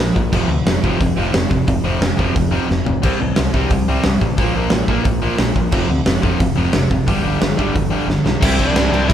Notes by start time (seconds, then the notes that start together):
0.00 A#2 F3
0.14 A#1 A#2 F3, kick
0.33 F1 F2 C3 F3, kick, crash
0.48 D2 F2 C3
0.65 F1 F2 C3, snare, open hi-hat
0.84 F1 F2 C3 F3, kick
1.01 F1 F2 C3, kick, open hi-hat
1.17 F1 F2 C3 F3
1.34 F1 F2 C3, snare, open hi-hat
1.51 F1 F2 C3, kick
1.67 F1 F2 C3, kick, open hi-hat
1.84 F1 F2 C3 F3
2.00 F1 F2 C3, snare, open hi-hat
2.17 F1 F2 C3 F3, kick
2.34 F1 F2 C3, kick, open hi-hat
2.51 F2 C3 F3
2.68 F1 F2 C3, snare
2.85 F1 F2 C3, floor tom
3.02 C2 C3 G3 C4, kick, crash
3.19 A1 C3 G3
3.36 C2 C3 G3, snare, open hi-hat
3.54 C2 C3 G3 C4, kick
3.70 C2 C3 G3, kick, open hi-hat
3.88 C2 C3 G3 C4
4.04 C2 C3 G3, snare, open hi-hat
4.21 A1 C3 G3, kick
4.37 A#1 A#2 F3 A#3, kick, open hi-hat
4.53 A#1 A#2 F3 A#3
4.70 A#1 A#2 F3, snare, open hi-hat
4.88 A#1 A#2 F3 A#3, kick
5.05 A#1 A#2 F3, kick, open hi-hat
5.22 A#2 F3 A#3
5.38 A#1 A#2 F3, snare, open hi-hat
5.56 A#1 A#2 F3, kick
5.72 F1 F2 C3 F3, kick, crash
5.89 D2 F2 C3
6.06 F1 F2 C3, snare, open hi-hat
6.22 F1 F2 C3 F3, kick
6.39 F1 F2 C3, kick, open hi-hat
6.56 F1 F2 C3 F3
6.73 F1 F2 C3, snare, open hi-hat
6.90 F1 F2 C3, kick
7.06 G1 G2 D3 G3, kick, open hi-hat
7.22 G1 G2 D3 G3
7.40 G1 G2 D3, snare, open hi-hat
7.57 G1 G2 D3 G3, kick
7.74 G1 G2 D3, kick, open hi-hat
7.90 G2 D3 G3
8.06 G1 G2 D3, snare
8.25 B1 G2 D3, snare
8.41 C2 C3 G3 C4 E4 E5, kick, crash
8.59 C2 D4 D5, kick, crash
8.74 C2, snare, crash
8.91 C2 C3 G3 C4 E4, crash
9.08 C2 E4 E5, kick